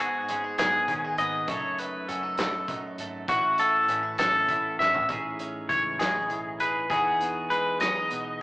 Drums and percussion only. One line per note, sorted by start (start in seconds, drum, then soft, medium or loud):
0.28 closed hi-hat medium
0.58 snare loud
0.58 closed hi-hat medium
0.88 kick medium
0.88 closed hi-hat medium
1.18 closed hi-hat medium
1.48 kick loud
1.48 closed hi-hat medium
1.78 closed hi-hat medium
2.09 closed hi-hat medium
2.38 snare loud
2.38 closed hi-hat medium
2.68 kick medium
2.68 closed hi-hat medium
2.98 closed hi-hat medium
3.28 kick loud
3.28 closed hi-hat loud
3.58 closed hi-hat medium
3.88 closed hi-hat medium
4.18 snare loud
4.18 closed hi-hat loud
4.49 kick medium
4.49 closed hi-hat medium
4.80 snare medium
4.94 floor tom medium
5.09 kick loud
5.09 closed hi-hat medium
5.39 closed hi-hat medium
5.69 kick medium
5.69 closed hi-hat medium
6.00 snare loud
6.00 closed hi-hat medium
6.30 closed hi-hat medium
6.60 closed hi-hat medium
6.90 kick loud
6.90 closed hi-hat medium
7.21 closed hi-hat medium
7.51 closed hi-hat medium
7.80 snare medium
7.80 closed hi-hat medium
8.10 closed hi-hat medium